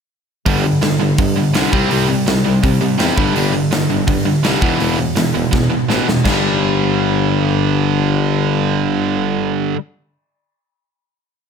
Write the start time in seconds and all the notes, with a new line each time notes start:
0.46 G1 G2 D3 G3, kick, open hi-hat
0.64 G2 D3
0.81 G1 G2 D3, snare, open hi-hat
1.00 G1 G2 D3
1.18 G2 D3, kick, open hi-hat
1.38 G2 D3
1.54 C2 G2 D3 G3, snare, open hi-hat
1.73 C2 C3 G3 C4, kick
1.91 C2 C3 G3 C4, open hi-hat
2.09 C3 G3
2.27 C2 C3 G3, snare, open hi-hat
2.46 C2 C3 G3
2.64 C3 G3, kick, open hi-hat
2.81 C3 G3
2.98 E2 C3 G3 C4, snare, open hi-hat
3.17 G1 G2 D3 G3, kick
3.36 G1 G2 D3 G3, open hi-hat
3.55 G2 D3
3.72 G1 G2 D3, snare, open hi-hat
3.89 G1 G2 D3
4.07 G2 D3, kick, open hi-hat
4.25 G2 D3
4.44 C2 G2 D3 G3, snare, open hi-hat
4.62 E1 E2 B2 E3, kick
4.80 E1 E2 B2 E3, open hi-hat
4.98 E2 B2
5.16 E1 E2 B2, snare, open hi-hat
5.35 E1 E2 B2
5.53 E2 B2, kick, snare
5.72 E2 B2
5.89 A1 E2 B2 E3, snare
6.07 E1 E2 B2, snare
6.25 G1 G2 D3, kick, snare, crash
6.29 G3